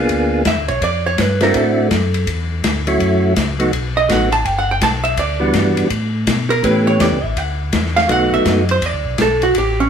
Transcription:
Already playing: A#3 B3 D4 F4 G#4
0.09 D2, kick, ride
0.45 E2 E5, kick, snare, hi-hat pedal, ride
0.57 D2
0.68 B1 C#5, ride
0.81 F2 D5, kick, ride
1.06 C#5
1.18 G2 B4, kick, snare, hi-hat pedal, ride
1.41 A3 C4 D4 E4 F#4 A#4, snare, ride
1.54 A2 A4, kick, ride
1.91 F#2, kick, snare, hi-hat pedal, ride
2.14 ride
2.27 E2, kick, ride
2.64 D2, kick, snare, hi-hat pedal, ride
2.87 F#3 A3 C#4 E4 F#4, ride
3.00 F#2, kick, ride
3.36 C#2, kick, snare, hi-hat pedal, ride
3.59 F#3 A3 B3 D#4 F#4, ride
3.73 B1, kick, ride
3.97 D#5
4.09 A1 F#3 A3 B3 D#4 F#4 F#5, kick, snare, hi-hat pedal, ride
4.32 A5, ride
4.45 G1 G5, kick, ride
4.59 F#5
4.71 G5
4.81 B1 A5, kick, snare, hi-hat pedal, ride
5.04 E5, ride
5.17 D2 D5, kick, ride
5.40 E3 G3 B3 D4 F#4
5.53 G2, kick, snare, hi-hat pedal, ride
5.76 G2, ride
5.90 A2, kick, ride
6.27 B2, kick, snare, hi-hat pedal, ride
6.50 A#4, ride
6.63 A2 E3 A3 B3 C#4 G4 B4, kick, ride
6.87 C#5
7.00 E2 D5, kick, snare, hi-hat pedal, ride
7.11 C#2
7.23 A1 E5
7.36 D2 F#5, kick, ride
7.73 E2, kick, snare, hi-hat pedal, ride
7.86 snare
7.96 F5, snare, ride
8.08 B1 F#3 A3 B3 D#4 F#4 F#5, kick, ride
8.32 B1 E5
8.45 F#2 D#5, kick, snare, hi-hat pedal, ride
8.69 C5, ride
8.82 E2, kick, ride
8.86 D5
8.93 D2
9.05 B1
9.18 B1 A4, kick, snare, hi-hat pedal, ride
9.42 F#4, ride
9.55 A1 G4, kick, ride
9.80 C#4

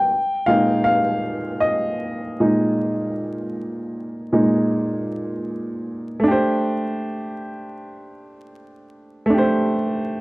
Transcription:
Already playing: G5
0.46 A#2 G#3 D#4 F5
0.84 F5
1.60 D#5
2.40 A#2 G#3 D#4
4.32 A#2 G#3 D#4
6.20 A3 D4
6.28 G4 C5
9.26 A3
9.30 D4 G4
9.38 C5

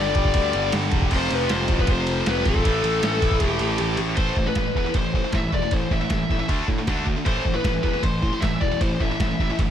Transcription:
Already playing: G1 G2 D3 G3 D5
0.15 G1, kick, ride
0.25 kick
0.34 D2, kick, ride
0.53 G1, ride
0.72 G1, snare, ride
0.92 E1, kick, ride
1.02 kick
1.11 F1 F2 C3 F3, kick, crash
1.16 C5
1.30 F1 B4, ride
1.49 F1 C5, snare, ride
1.68 A1, kick, ride
1.78 B4, kick
1.87 F1 C5, kick, ride
2.07 ride
2.26 F1 B4, snare, ride
2.45 G#1 A4, kick, ride
2.55 kick
2.64 A1 A2 E3 A3, kick, ride
2.84 A1, ride
3.03 A1, snare, ride
3.22 A1, kick, ride
3.31 kick
3.40 E1, kick, ride
3.46 G4
3.59 A1, ride
3.78 A1, ride
3.97 A1, ride
4.16 A1 A2 E3 A3 C5, kick, ride bell
4.36 A1 A2 E3, kick
4.47 A2 E3 B4
4.55 A1 A2 E3, kick, snare, ride bell
4.75 E2 A2 E3 B4, kick
4.86 A2 E3
4.94 A1 A2 E3 C5, kick, ride bell
5.14 A2 E3, kick
5.24 A2 E3
5.33 A1 A2 E3 E5, kick, snare, ride bell
5.52 E1 A2 E3 D5, kick
5.62 A2 E3
5.71 A1 A2 E3 C5, kick, ride bell
5.91 A1 A2 E3 E5, kick
6.01 A2 E3
6.10 A1 A2 E3, kick, snare, ride bell
6.30 A1 A2 E3, kick
6.39 A2 E3
6.48 D2 D3 A3 D4, kick, ride bell
6.68 A2 D3 A3, kick
6.79 D3 A3
6.87 D2 D3 A3 D4, kick, snare, ride bell
7.06 D3 A3, kick
7.17 D3 A3
7.26 A1 A2 E3 A3 C5, kick, ride bell
7.45 A1 A2 E3, kick
7.54 A2 E3 B4
7.64 A1 A2 E3, kick, snare, ride bell
7.83 E2 A2 E3 B4, kick
7.93 A2 E3
8.03 A1 A2 E3 C5, kick, ride bell
8.22 A2 E3, kick
8.33 A2 E3
8.40 A1 A2 E3 E5, kick, snare, ride bell
8.60 E1 A2 E3 D5, kick
8.71 A2 E3
8.81 A1 A2 E3 C5, kick, ride bell
9.00 A1 A2 E3 E5, kick
9.11 A2 E3
9.20 A1 A2 E3, kick, snare, ride bell
9.39 A1 A2 E3, kick
9.51 A2 E3
9.58 G1 A2 E3, kick, ride bell

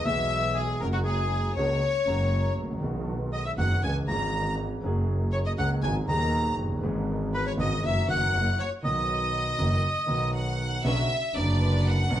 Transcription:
0.04 B1 B2 E3 G#3 B3 G#4 E5
0.54 G#4
0.80 F#1 F#2 C#3 F#3 G#3 A#3 F#4 A#4
0.93 F#4
1.05 G#4
1.55 C#2 C#3 G#3 A#3 F#4 C#5
2.05 F#1 F#2 C#3 F#3 G#3 A#3 F#4
2.57 A1
2.64 G#1
2.70 A1
2.76 A#1 D#3
2.82 B1 B2 G#3 B3 F#4
3.32 D#5
3.45 E5
3.57 F#1 F#2 D#3 G#3 B3 F#4 F#5
3.82 C#2 C#3 E3 G#3 C#4 G#4 G#5
4.06 G#1 G#2 E3 G#3 C#4 A#5
4.10 G#4
4.83 F#1 F#2 F#3 A#3 C#4 G#4
5.33 C#5
5.45 D#5
5.58 C#2 C#3 F#3 A#3 C#4 G#4 F#5
5.82 G#1 G#2 F#3 B3 D#4 G#4 G#5
6.06 D#1 D#2 F#3 B3 D#4 G#4 A#5
6.58 F#1
6.64 F1
6.71 F#1
6.77 G1
6.81 G#1 G#2 E3 G#3 C#4 G#4
7.34 B4
7.47 C#5
7.57 G#1 G#2 E3 G#3 C#4 G#4 D#5
7.83 F#1 F#2 D#3 F#3 B3 F#4 E5
8.07 F#1 F#2 D#3 F#3 B3 F#4 F#5
8.33 F#1 F#2 C#3 F#3 A#3 E4
8.59 C#5
8.82 B1 B2 D#3 F#3 B3 F#4 D#5
9.58 F#1 F#2 D#3 F#3 B3 F#4
10.06 B1 B2 D#3 F#3 B3 F#4
10.35 F#5
10.84 B1 B2 C#3 F#3 B3 C#4 D4 B4 E5
11.33 F#1 F#2 D3 F#3 B3 D4 B4 D5
11.37 D4
11.86 F#5
12.09 B1 B2 F#3 B3 C#4 D4 B4

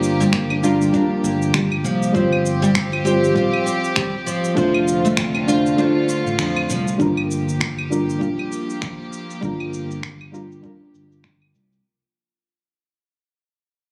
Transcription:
Already playing: G1 F3 G3 A#3 D4 F4 G4 A#4
0.03 shaker
0.20 G3, shaker
0.33 A#3, finger snap, kick, shaker
0.50 D4, claves
0.63 G3 D4 F4 A#4, shaker
0.82 shaker
0.91 G3 D4 F4, kick, shaker
0.96 A#4
1.24 G1 A#3, shaker
1.42 shaker
1.54 G3, finger snap, kick, shaker
1.72 claves
1.84 C2 F3, shaker
2.03 shaker
2.13 G1 F3 G3 C4 F4 G4, kick, shaker
2.17 C5
2.33 claves
2.46 shaker
2.62 G3, shaker
2.75 C4, finger snap, kick, shaker
2.92 F4, claves
3.05 G3 C4 F4 G4 C5, shaker
3.24 shaker
3.34 A#1 G3 C4 F4 C5, kick, shaker
3.53 claves
3.66 C4, shaker
3.84 shaker
3.96 G3, finger snap, kick, shaker
4.26 F3, shaker
4.45 shaker
4.55 F1 D3 F3 A3 D4 F4 C5, kick, shaker
4.74 claves
4.88 shaker
5.05 A3, shaker
5.17 C4, finger snap, kick, shaker
5.35 D4, claves
5.47 A3 D4 F4 C5, shaker
5.66 shaker
5.76 A3 D4 F4, shaker
5.80 C5
6.09 F4, shaker
6.26 A1, shaker
6.39 F2 F3, finger snap, shaker
6.56 claves
6.69 C2 F3, shaker
6.88 shaker
6.98 G1 F3 G3 A#3 D4 F4 G4 A#4, kick, shaker
7.17 claves
7.31 shaker
7.49 shaker
7.61 finger snap, kick, shaker
7.79 claves
7.90 G3 D4 F4 A#4, shaker
8.10 shaker
8.19 A#1 G3 D4 F4, kick, shaker
8.23 A#4
8.39 claves
8.52 shaker
8.70 shaker
8.82 finger snap, kick, shaker
9.13 shaker
9.31 shaker
9.41 G1 G3 D4 F4 A#4, kick, shaker
9.60 claves
9.74 shaker
9.91 shaker
10.03 finger snap, kick, shaker
10.21 claves
10.32 G3 D4 F4 A#4, shaker
10.52 shaker
10.62 G3 D4 F4, kick, shaker
10.66 A#4
10.94 G1, shaker
11.12 shaker
11.24 finger snap, kick, shaker
11.42 claves
11.55 C2, shaker
11.72 shaker

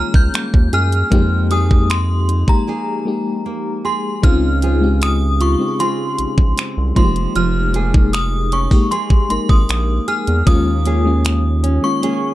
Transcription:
Already playing: D#3 G3 G#3 A#3 C#4 F4 G#4 F6
0.14 C#2 G6, kick
0.34 A#3, finger snap, closed hi-hat
0.54 D#2, kick
0.73 F#2 G#4 F6, closed hi-hat
0.92 closed hi-hat
1.10 F2 F3 G#3 A#3 D#4 G4, kick, closed hi-hat
1.51 A#3 D#4 G#4 D#6, closed hi-hat
1.69 G#3 A#3 D#4 G4, kick
1.90 C6, finger snap, closed hi-hat
2.29 D#4, closed hi-hat
2.47 G#3 A#3 D#4 G4 A#5, kick
2.67 A#3 D#4 G#4
3.05 G#3 A#3 D#4 G4
3.46 A#3
3.85 G#4 C6
4.22 C#2 C#3 G#3 C4 D#4 F4 F6, kick, closed hi-hat
4.62 C4 F4 G#4, closed hi-hat
4.81 G#3 C4 D#4 G4
5.02 D#6, finger snap, closed hi-hat
5.40 F4 C#6, closed hi-hat
5.59 G#3 C4 D#4 G4
5.68 G#4
5.79 C4 F4 G#4 C6, closed hi-hat
6.19 A#1, closed hi-hat
6.38 A#1, kick
6.57 C4, finger snap, closed hi-hat
6.77 C2
6.95 F1 F3 G#3 A#3 D#4 F4 C6, kick, closed hi-hat
7.05 G4
7.16 closed hi-hat
7.35 F1 F3 F6, closed hi-hat
7.74 A#3 D#4 G#4, closed hi-hat
7.92 G#3 A#3 D#4 G#4, kick
8.13 D#6, finger snap, closed hi-hat
8.52 C#4 C#6, closed hi-hat
8.70 G#3 A#3 D#4 G4, kick
8.91 A#3 D#4 G#4 C6, closed hi-hat
9.10 kick
9.29 G#1 G#3 A#3 D#4 A#4 C6, closed hi-hat
9.49 G#1 D#6, kick
9.69 A#1 A#3, finger snap, closed hi-hat
10.08 G#4 F6, closed hi-hat
10.27 E2, closed hi-hat
10.46 D#2 D#3 G#3 A#3 C#4 F4 D#6, kick, closed hi-hat
10.85 A#3 C#4 G#4, closed hi-hat
11.04 G#3 A#3 C#4 F4
11.25 finger snap, closed hi-hat
11.63 C#4, closed hi-hat
11.82 G#3 A#3 C#4 F4 C#6
12.02 A#3 C#4 G#4, closed hi-hat

